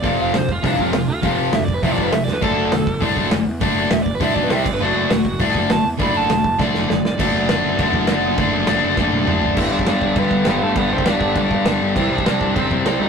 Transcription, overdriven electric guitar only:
X:1
M:4/4
L:1/8
Q:1/4=201
K:Dmix
V:1 name="Overdriven electric guitar"
d =f c =F D F2 F- | =F z (3e d B (3e d B (3e d B | A4 z4 | z2 (3e d B (3e d B (3e d B |
F4 z2 a z | b a3 d3 d | z8 | z8 |
[E,E] [Dd] [Dd]2 [B,B]2 [B,B] [A,A] | [B,B] [Cc] [Dd]4- [Dd] z | [E,E] [Dd] [Dd]2 [Cc]2 [Cc] [_E_e] |]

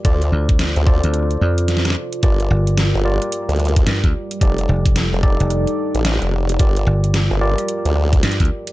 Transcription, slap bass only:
X:1
M:4/4
L:1/16
Q:"Swing 16ths" 1/4=110
K:Gm
V:1 name="Slap bass" clef=bass
z2 D,,3 z2 D,,3 F,,4 z2 | z2 G,,,3 z6 z G,, D,, z2 | z2 F,,,3 z2 F,,,2 z6 z | z2 G,,,3 z6 z G,, D,, z2 |]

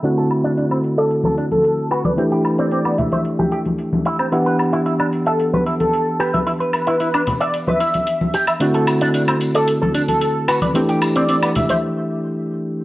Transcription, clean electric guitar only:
X:1
M:4/4
L:1/16
Q:1/4=112
K:Em
V:1 name="Clean electric guitar"
D A z D D C z d z A D z3 F d | C G z C C B, z c z G G z3 E C | E B z E E D z e z B E z3 G e | E B z E E D z e z B E z3 G e |
D A z D D C z d z A D z3 F d | C G z C C B, z c z8 |]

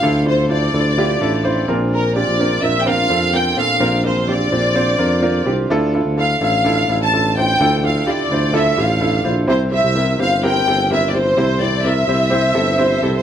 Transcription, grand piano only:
X:1
M:4/4
L:1/8
Q:1/4=127
K:Dm
V:1 name="Grand piano"
[DEFA] [DEFc] [DEFc] [DEFA] [DEFG] [DEFA] [DEFc] [CDFB]- | [CDFB] [CDFG] [CDFB] [CDFB] [CDFB] [CDFA] [CDFB] [CDFA] | [CDFB] [CDFB] [CDFG] [CDFc] [CDFc] [CDFB] [CDFB] [CDFG] | [DEFA] [DEFA] [DEFA] [DEFA] [DEFA] [DEFA] [DEFA] [DEFc] |
[DEFA] [DEFA] [DEFG] [DEFc] [DEFA] [DEFG] [DEFA] [DEFc] | [CEGc] [CEGc] [CEGB] [CEGc] [CEGB] [CEGA] [CEGB] [CEGc] | [CEGc] [CEGc] [CEGB] [CEGc] [CEGc] [CEGA] [CEGc] [CEGA] |]
V:2 name="Grand piano" clef=bass
D,3 z4 B,,- | B,,2 z4 z B,,- | B,,2 z6 | D,3 z4 z |
D,3 z4 z | C,3 z4 z | C,3 z4 z |]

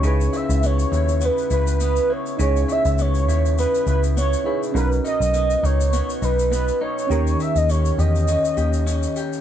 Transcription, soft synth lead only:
X:1
M:4/4
L:1/16
Q:"Swing 16ths" 1/4=102
K:C#dor
V:1 name="Soft synth lead"
c2 e2 c4 B2 B2 B2 c2- | c2 e2 c4 B2 B2 c3 z | B2 d4 c4 B2 B2 c2- | c2 e d c2 d8 z2 |]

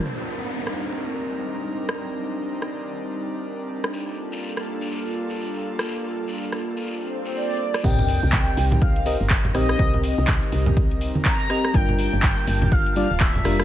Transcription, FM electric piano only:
X:1
M:4/4
L:1/8
Q:"Swing 16ths" 1/4=123
K:Cdor
V:1 name="FM electric piano"
z8 | z8 | z8 | z8 |
[CGBe]4- [CGBe] [CGBe] z [CGBe] | [CGBe]6- [CGBe] [CGBe] | [G,DFB]4- [G,DFB] [G,DFd] z [G,DFB] |]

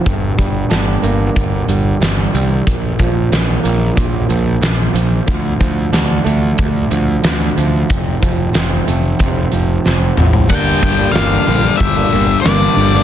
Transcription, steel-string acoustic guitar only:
X:1
M:4/4
L:1/16
Q:1/4=92
K:Gm
V:1 name="Steel-string acoustic guitar" clef=bass
G,,2 G,2 D2 B,2 D,2 G,2 D,2 G,2 | B,,2 F,2 _D2 B,2 B,,2 F,2 B,,2 F,2 | D,2 F,2 D2 A,2 D,2 F,2 D,2 F,2 | F,,2 F,2 C2 A,2 C,2 F,2 C,2 F,2 |
[G,,D,G,B,D]3 [G,B,D] [G,,D,G,B,D]2 [D,G,B,D]3 [G,B,D] [D,G,B,D]2 [G,,D,G,B,D]3 [G,B,D] |]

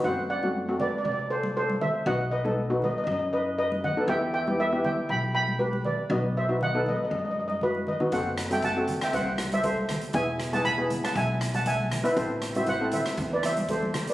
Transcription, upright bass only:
X:1
M:4/4
L:1/8
Q:"Swing 16ths" 1/4=119
K:Em
V:1 name="Upright bass" clef=bass
F,,4 C,4 | B,,,4 F,,4 | E,,4 B,,,4 | B,,,4 F,,4 |
F,,,4 C,,4 | E,,,4 B,,,4 | A,,,4 E,,4 |]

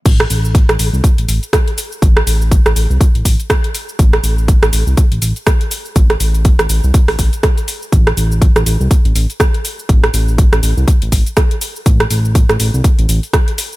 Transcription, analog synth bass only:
X:1
M:4/4
L:1/16
Q:"Swing 16ths" 1/4=122
K:Am
V:1 name="Analog synth bass" clef=bass
A,,,2 A,,,3 A,,, A,,, C,, z A,,, A,,, z4 z | A,,,2 A,,,3 A,,, A,,, C,, z A,,, A,,, z4 z | A,,,2 A,,,3 A,,, A,,, C,, z A,,, A,,, z4 z | A,,,2 A,,,3 A,,, A,,, C,, z A,,, A,,, z4 z |
A,,,2 A,,,3 A,,, A,,, C,, z A,,, A,,, z4 z | A,,,2 A,,,3 A,,, A,,, C,, z A,,, A,,, z4 z | A,,,2 A,,,3 A,,, A,,, C,, z A,,, A,,, z4 z |]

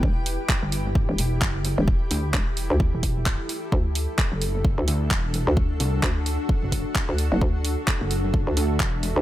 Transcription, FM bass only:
X:1
M:4/4
L:1/16
Q:"Swing 16ths" 1/4=130
K:Dmix
V:1 name="FM bass" clef=bass
E,,,3 z6 E,,, z4 z E,,,- | E,,,2 z2 E,,,3 D,,2 z6 z | D,,3 z6 D,, z4 z D,,- | D,,2 z2 D,,3 z6 D,,2 F,,, |
D,,3 z6 D,, z4 z D,, |]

